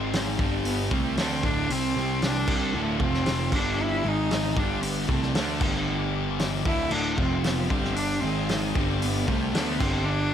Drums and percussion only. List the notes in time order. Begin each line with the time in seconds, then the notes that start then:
0.13 snare, open hi-hat
0.39 kick
0.65 open hi-hat
0.91 kick
1.17 snare, open hi-hat
1.43 kick
1.70 open hi-hat
2.22 snare, open hi-hat
2.48 kick, crash
3.00 kick
3.14 snare
3.26 snare, open hi-hat
3.52 kick, crash
4.31 snare, open hi-hat
4.57 kick
4.83 open hi-hat
5.09 kick
5.23 snare
5.35 snare, open hi-hat
5.61 kick, crash
6.39 snare, open hi-hat
6.65 kick
6.91 crash
7.18 kick
7.44 snare, open hi-hat
7.70 kick
7.84 snare
7.96 open hi-hat
8.49 snare, open hi-hat
8.75 kick
9.02 open hi-hat
9.28 kick
9.55 snare, open hi-hat
9.81 kick, crash